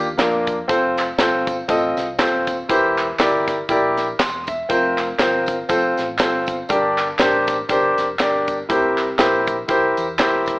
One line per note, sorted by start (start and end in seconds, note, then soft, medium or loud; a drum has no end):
0.00 0.17 D#2 medium
0.18 0.62 F2 medium
0.18 0.55 A#3 medium
0.18 0.55 D4 medium
0.18 0.56 F4 medium
0.18 0.56 A#4 medium
0.18 kick medium
0.18 snare loud
0.18 clap loud
0.18 closed hi-hat loud
0.18 tambourine loud
0.47 kick medium
0.47 closed hi-hat medium
0.47 tambourine medium
0.68 1.12 F1 loud
0.68 1.05 C4 medium
0.68 1.05 F4 medium
0.68 1.05 A4 medium
0.68 1.06 C5 loud
0.68 kick loud
0.68 closed hi-hat loud
0.68 tambourine medium
0.98 clap medium
0.98 closed hi-hat medium
0.98 tambourine medium
1.18 1.62 G1 medium
1.18 1.55 C4 medium
1.18 1.56 F4 medium
1.18 1.56 A4 medium
1.18 1.56 C5 medium
1.18 snare loud
1.18 clap medium
1.18 closed hi-hat medium
1.18 tambourine loud
1.47 kick medium
1.47 closed hi-hat medium
1.47 tambourine medium
1.68 1.93 A1 medium
1.68 2.05 C4 medium
1.68 2.05 F4 medium
1.68 2.06 A4 medium
1.68 2.06 D#5 medium
1.68 kick loud
1.68 closed hi-hat medium
1.68 tambourine medium
1.97 2.16 C2 medium
1.97 snare soft
1.97 closed hi-hat medium
1.97 tambourine medium
2.19 2.62 D#1 medium
2.19 2.55 C4 medium
2.19 2.55 F4 medium
2.19 2.56 A4 medium
2.19 2.56 C5 medium
2.19 kick medium
2.19 snare loud
2.19 clap loud
2.19 closed hi-hat medium
2.19 tambourine loud
2.47 kick medium
2.47 closed hi-hat medium
2.47 tambourine medium
2.69 3.12 E1 loud
2.69 3.44 E3 medium
2.69 3.05 E4 medium
2.69 3.06 G4 medium
2.69 3.06 A#4 medium
2.69 3.06 C5 loud
2.69 kick loud
2.69 closed hi-hat loud
2.69 tambourine medium
2.98 clap medium
2.98 closed hi-hat medium
2.98 tambourine medium
3.19 3.62 G1 medium
3.19 3.56 E4 medium
3.19 3.56 G4 medium
3.19 3.56 A#4 medium
3.19 3.56 D5 loud
3.19 snare loud
3.19 clap medium
3.19 closed hi-hat medium
3.19 tambourine loud
3.47 kick medium
3.47 snare soft
3.47 closed hi-hat medium
3.47 tambourine medium
3.69 4.12 A#1 medium
3.69 4.05 E4 medium
3.69 4.06 G4 medium
3.69 4.06 A#4 medium
3.69 4.06 D5 loud
3.69 kick loud
3.69 closed hi-hat medium
3.69 tambourine medium
3.97 snare soft
3.97 closed hi-hat medium
3.97 tambourine medium
4.19 4.62 E1 medium
4.19 4.47 C6 medium
4.19 kick medium
4.19 snare loud
4.19 clap loud
4.19 closed hi-hat loud
4.19 tambourine loud
4.47 4.95 E5 medium
4.47 kick medium
4.47 closed hi-hat medium
4.47 tambourine medium
4.69 5.12 F1 loud
4.69 5.05 C4 medium
4.69 5.06 F4 medium
4.69 5.06 A#4 medium
4.69 5.06 C5 loud
4.69 kick loud
4.69 closed hi-hat loud
4.69 tambourine medium
4.98 clap medium
4.98 closed hi-hat medium
4.98 tambourine soft
5.19 5.62 G1 medium
5.19 5.55 C4 medium
5.19 5.56 F4 medium
5.19 5.56 A#4 medium
5.19 5.56 C5 loud
5.19 snare loud
5.19 clap medium
5.19 closed hi-hat medium
5.19 tambourine medium
5.46 kick medium
5.46 closed hi-hat medium
5.46 tambourine medium
5.69 5.93 F1 loud
5.69 6.05 C4 medium
5.69 6.06 F4 medium
5.69 6.06 A4 medium
5.69 6.06 C5 medium
5.69 kick loud
5.69 closed hi-hat medium
5.69 tambourine medium
5.97 6.17 A1 medium
5.97 snare soft
5.97 closed hi-hat medium
5.97 tambourine medium
6.18 6.62 G1 medium
6.18 6.56 C4 medium
6.18 6.56 F4 medium
6.18 6.56 A4 medium
6.18 6.57 C5 medium
6.18 kick medium
6.18 snare loud
6.18 clap loud
6.18 closed hi-hat loud
6.18 tambourine loud
6.46 kick medium
6.46 closed hi-hat medium
6.46 tambourine medium
6.69 7.12 G1 loud
6.69 7.44 G2 medium
6.69 7.06 D4 medium
6.69 7.06 G4 medium
6.69 7.06 A#4 medium
6.69 7.06 D5 medium
6.69 kick loud
6.69 closed hi-hat loud
6.69 tambourine medium
6.98 clap medium
6.98 closed hi-hat medium
6.98 tambourine medium
7.19 7.62 A1 medium
7.19 7.55 D4 medium
7.19 7.56 G4 medium
7.19 7.56 A#4 medium
7.19 7.56 C5 loud
7.19 snare loud
7.19 clap medium
7.19 closed hi-hat medium
7.19 tambourine loud
7.47 kick medium
7.47 snare soft
7.47 closed hi-hat medium
7.47 tambourine medium
7.69 7.93 G1 medium
7.69 8.05 D4 medium
7.69 8.06 G4 medium
7.69 8.06 A#4 medium
7.69 8.06 C5 loud
7.69 kick loud
7.69 closed hi-hat medium
7.69 tambourine medium
7.98 8.17 F1 medium
7.98 snare soft
7.98 closed hi-hat medium
7.98 tambourine medium
8.19 8.62 G1 medium
8.19 8.56 D4 medium
8.19 8.56 G4 medium
8.19 8.56 A#4 medium
8.19 8.56 D5 medium
8.19 kick medium
8.19 snare loud
8.19 clap loud
8.19 closed hi-hat loud
8.19 tambourine loud
8.47 kick medium
8.47 closed hi-hat medium
8.47 tambourine medium
8.69 9.12 C2 loud
8.69 9.44 C3 medium
8.69 9.05 E4 medium
8.69 9.06 G4 medium
8.69 9.06 A#4 medium
8.69 9.06 C5 medium
8.69 kick loud
8.69 closed hi-hat loud
8.69 tambourine medium
8.98 clap medium
8.98 closed hi-hat medium
8.98 tambourine medium
9.19 9.62 A#1 medium
9.19 9.55 E4 medium
9.19 9.55 G4 medium
9.19 9.55 A#4 medium
9.19 9.56 C5 loud
9.19 snare loud
9.19 clap medium
9.19 closed hi-hat medium
9.19 tambourine medium
9.47 kick medium
9.47 closed hi-hat medium
9.47 tambourine medium
9.68 9.93 C2 medium
9.68 10.05 E4 medium
9.68 10.05 G4 medium
9.68 10.05 A#4 medium
9.68 10.06 C5 medium
9.68 kick loud
9.68 closed hi-hat medium
9.68 tambourine medium
9.97 10.16 E2 medium
9.97 closed hi-hat medium
9.97 tambourine medium
10.18 10.59 E1 loud
10.18 10.55 E4 medium
10.18 10.55 G4 medium
10.18 10.55 A#4 medium
10.18 10.56 C5 loud
10.18 kick medium
10.18 snare loud
10.18 clap loud
10.18 closed hi-hat loud
10.18 tambourine loud
10.46 kick medium
10.46 closed hi-hat medium
10.46 tambourine medium